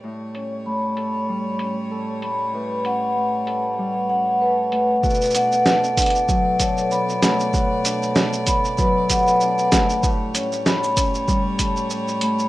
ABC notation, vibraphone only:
X:1
M:4/4
L:1/8
Q:"Swing 16ths" 1/4=96
K:Bm
V:1 name="Vibraphone"
z c b z4 b | B f z3 f B z | B f z3 c b z | z3 b B f z2 |
z c b z4 b |]